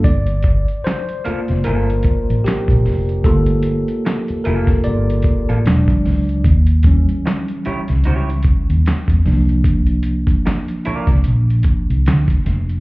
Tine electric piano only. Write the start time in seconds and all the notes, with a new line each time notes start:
0.04 D5
0.84 C5
1.26 A3 A#3 F4
1.64 A#4
2.44 G4
3.24 A3 A#3 F4 A4
4.44 A#3 F4 A4 A#4
4.84 D5
5.66 F#3 G#3 D4
6.86 E3 G3 C#4
9.26 F3 A#3 D4